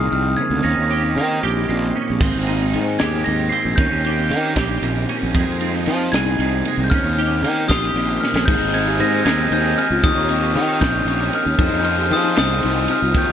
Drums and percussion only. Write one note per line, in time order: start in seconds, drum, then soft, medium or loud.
2.21 kick loud
2.21 crash medium
2.47 ride medium
2.74 ride medium
2.99 snare loud
2.99 ride medium
3.26 ride medium
3.52 ride medium
3.78 kick loud
3.78 ride medium
4.04 ride medium
4.31 ride medium
4.56 kick medium
4.56 snare loud
4.56 ride medium
4.83 ride medium
5.09 ride medium
5.35 kick medium
5.35 ride medium
5.61 ride medium
5.86 ride medium
6.13 snare medium
6.13 ride medium
6.40 ride medium
6.65 ride medium
6.91 kick medium
6.91 ride medium
7.19 ride medium
7.44 ride medium
7.69 kick medium
7.69 snare loud
7.69 ride medium
7.96 ride medium
8.24 snare medium
8.36 snare medium
8.48 kick loud
8.48 crash loud
8.74 ride medium
9.00 ride medium
9.26 snare loud
9.26 ride loud
9.52 ride medium
9.78 ride medium
10.04 kick loud
10.04 ride medium
10.29 ride medium
10.56 ride medium
10.81 kick medium
10.81 snare loud
10.81 ride medium
11.07 ride medium
11.33 ride medium
11.59 kick loud
11.59 ride medium
11.85 ride medium
12.11 ride medium
12.36 snare loud
12.36 ride loud
12.63 ride medium
12.88 ride medium
13.14 kick medium
13.14 ride loud